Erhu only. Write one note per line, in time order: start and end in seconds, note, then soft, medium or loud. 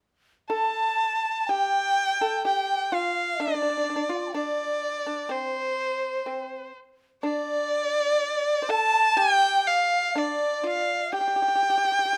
0.49 1.43 A5 medium
1.43 1.51 A5 medium
1.50 2.46 G5 medium
2.46 2.96 G5 medium
2.94 3.42 F5 medium
3.40 4.34 D5 medium
4.35 5.33 D5 medium
5.32 6.75 C5 medium
7.23 8.71 D5 loud
8.70 9.19 A5 loud
9.17 9.69 G5 loud
9.67 10.19 F5 medium
10.18 10.68 D5 medium
10.66 11.14 F5 medium
11.14 12.17 G5 medium